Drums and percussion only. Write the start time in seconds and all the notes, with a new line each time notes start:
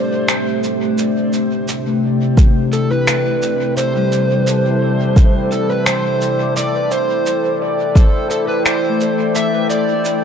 0.28 finger snap, cabasa
0.63 cabasa
0.98 cabasa
1.33 cabasa
1.68 cabasa
2.37 kick, cabasa
2.73 cabasa
3.07 finger snap, cabasa
3.42 cabasa
3.77 cabasa
4.12 cabasa
4.47 cabasa
5.16 kick, cabasa
5.52 cabasa
5.86 finger snap, cabasa
6.21 cabasa
6.57 cabasa
6.91 cabasa
7.26 cabasa
7.96 kick, cabasa
8.31 cabasa
8.66 finger snap, cabasa
9.00 cabasa
9.35 cabasa
9.70 cabasa
10.05 cabasa